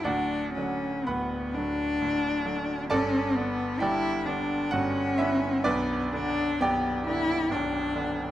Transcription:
<<
  \new Staff \with { instrumentName = "Cello" } { \time 3/4 \key g \lydian \tempo 4 = 66 d'8 cis'8 b8 d'4. | cis'8 b8 e'8 d'8 cis'4 | b8 d'8 b8 e'8 d'4 | }
  \new Staff \with { instrumentName = "Grand piano" } { \time 3/4 \key g \lydian <fis' d'' fis''>4 <b' fis'' b''>4. r8 | <a' d'' a''>4 <g' d'' g''>4 <fis' fis''>8 <e' e''>8 | <d' b' d''>4 <g' d'' g''>4. r8 | }
  \new Staff \with { instrumentName = "Grand piano" } { \clef bass \time 3/4 \key g \lydian <d,, d,>8 <d fis d'>8 <d,, d,>8 <d fis d'>8 <d,, d,>8 <d fis d'>8 | <g,, g,>8 <d b d'>8 <g,, g,>8 <d b d'>8 <g,, g,>8 <d b d'>8 | <b,,, b,,>8 <d b d'>8 <b,,, b,,>8 <d b d'>8 <b,,, b,,>8 <d b d'>8 | }
>>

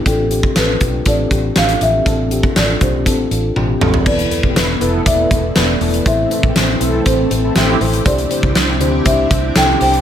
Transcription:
<<
  \new Staff \with { instrumentName = "Marimba" } { \time 4/4 \key e \phrygian \tempo 4 = 120 a'4 b'4 d''4 f''8 e''8~ | e''4 d''8 c''4. r4 | d''2 e''2 | e''2 c''4. r8 |
d''2 e''4 g''8 g''8 | }
  \new Staff \with { instrumentName = "Analog polysynth" } { \time 4/4 \key e \phrygian r1 | r1 | r8. <c' e' g'>16 <e' b'>16 r16 <b e' a'>8 r8 <b e' a'>16 r4 r16 | r8. <c' e' g'>16 <e' a' c''>16 r16 <c' e' a'>8 <c' e' g'>16 <c' e' a'>16 r16 <c' e' a'>16 <c' e' g'>8 r8 |
r1 | }
  \new Staff \with { instrumentName = "FM electric piano" } { \time 4/4 \key e \phrygian <c' d' f' g'>8 <c' d' f' g'>8 <c' d' f' a'>8 <c' d' f' g'>8 <c' d' f' a'>8 <c' d' f' g'>8 <c' d' f' g'>8 <c' d' f' g'>8 | <c' d' f' a'>8 <c' d' f' g'>8 <c' d' f' a'>8 <c' d' f' g'>8 <c' d' f' a'>8 <c' d' f' a'>8 <c' d' f' g' g''>8 <c' d' f' a' b''>8 | <b e' a' b'>8 <b e' a' b'>8 <b e' a' b'>8 <b e' a' b'>8 <b e' a' d''>8 <b e' a' b'>8 <b e' a' b'>8 <b e' a' b'>8 | <c' e' a' c''>8 <c' e' a' b'>8 <c' e' a' c''>8 <c' e' a' c''>8 <c' e' a' c''>8 <c' e' a' c''>8 <c' e' a' c''>8 <c' e' a' c''>8 |
<d' e' g' c''>8 <d' e' g' c''>8 <d' e' g' c''>8 <d' e' g' c''>8 <d' e' g' c''>8 <d' e' g' c''>8 <d' e' g' a'>8 <d' e' g' c''>8 | }
  \new Staff \with { instrumentName = "FM electric piano" } { \clef bass \time 4/4 \key e \phrygian a,4. r2 r8 | a,4. r2 r8 | e4. r2 r8 | a,4. r2 r8 |
c4. r2 r8 | }
  \new Staff \with { instrumentName = "String machine" } { \time 4/4 \key e \phrygian << { r1 | r1 | <e a>1~ | <e a>1 |
<c d' e'>1 | } \\ { r1 | r1 | b1 | c'1 |
g'1 | } >> }
  \new Staff \with { instrumentName = "Fingered electric bass" } { \clef bass \time 4/4 \key e \phrygian a,,4 a,,8 b,,8 a,,8 a,,8 a,,8 a,,8 | a,,4 a,,8 b,,8 a,,8 a,,8 a,,8 a,,8 | e,,8 r16 e,,16 e,,8 f,,8 e,,8 e,,8 e,,8 e,,8 | a,,8 r16 a,,16 a,,8 b,,8 a,,8 a,,8 a,,8 a,,8 |
c,8 r16 c,16 c,8 d,8 c,8 c,8 c,8 c,8 | }
  \new DrumStaff \with { instrumentName = "Drums" } \drummode { \time 4/4 <hh bd>8 hh16 bd16 <hh sn>8 <hh bd>8 <hh bd>8 <hh bd>8 <hh sn>16 hh16 hh8 | <hh bd>8 hh16 bd16 <hh sn>8 <hh bd>8 <hh bd>8 hh8 tommh8 toml16 tomfh16 | <cymc bd>16 hh16 hh16 bd16 <hh sn>8 hh8 <hh bd>8 <hh bd>8 <hh sn>8 hho16 hh16 | <hh bd>8 hh16 bd16 <hh sn>8 hh8 <hh bd>8 hh8 <hh sn>8 hho16 hh16 |
<hh bd>16 hh16 hh16 bd16 <hh sn>8 hh8 <hh bd>8 <hh bd>8 <hh sn>8 hho16 hh16 | }
>>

